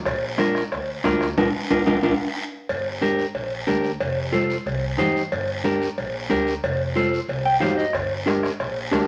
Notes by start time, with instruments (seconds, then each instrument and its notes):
0.05 upright bass A#1, bombo low, bombo rim, cowbell, high conga, long guiro
0.38 clean electric guitar D4 F4 A#4, bombo rim, cowbell, high conga, short guiro
0.55 bombo rim, short guiro
0.72 upright bass D2, bombo rim, cowbell, high conga, long guiro
1.04 upright bass D2, clean electric guitar D4 F4 A#4, bombo low, bombo rim, cowbell, high conga, low timbale, short guiro
1.21 bombo rim, short guiro
1.37 upright bass A#1, clean electric guitar D4 F4 A#4, bombo low, high conga, high timbale, long guiro
1.70 upright bass A#1, clean electric guitar D4 F4 A#4, bombo low, high conga, high timbale, long guiro
1.86 upright bass A#1, clean electric guitar D4 F4 A#4, bombo low, high conga, high timbale, long guiro
2.03 upright bass A#1, clean electric guitar D4 F4 A#4, bombo low, high conga, high timbale, long guiro
2.69 upright bass G1, cowbell, high conga, long guiro
3.01 clean electric guitar D4 G4 A#4, cowbell, high conga, short guiro
3.19 short guiro
3.35 upright bass A#1, cowbell, high conga, long guiro
3.67 upright bass D2, clean electric guitar D4 G4 A#4, cowbell, high conga, short guiro
3.84 short guiro
4.00 upright bass F1, cowbell, high conga, long guiro
4.32 clean electric guitar F4 A4 C5, cowbell, high conga, short guiro
4.50 short guiro
4.66 upright bass C2, cowbell, high conga, long guiro
4.98 upright bass G2, clean electric guitar D#4 G4 C5, cowbell, high conga, low conga, short guiro
5.16 short guiro
5.32 upright bass G1, cowbell, high conga, long guiro
5.64 clean electric guitar D4 G4 A#4, cowbell, high conga, short guiro
5.82 short guiro
5.98 upright bass A#1, cowbell, high conga, long guiro
6.29 upright bass D2, clean electric guitar D4 G4 A#4, cowbell, high conga, short guiro
6.47 short guiro
6.63 upright bass F1, cowbell, high conga, long guiro
6.96 clean electric guitar F4 A4 C5, cowbell, high conga, short guiro
7.13 short guiro
7.28 upright bass C2, cowbell, high conga, long guiro
7.46 clean electric guitar G5
7.60 upright bass G2, clean electric guitar D#4 G4 C5 F5, cowbell, high conga, low conga, low timbale, short guiro
7.77 clean electric guitar D#5, short guiro
7.93 upright bass G1, bombo low, bombo rim, cowbell, high conga, long guiro
8.26 clean electric guitar D4 G4 A#4, bombo rim, cowbell, high conga, short guiro
8.43 bombo rim, short guiro
8.60 upright bass A#1, bombo rim, cowbell, high conga, long guiro
8.91 upright bass D2, clean electric guitar D4 G4 A#4, bombo low, bombo rim, cowbell, high conga, low timbale, short guiro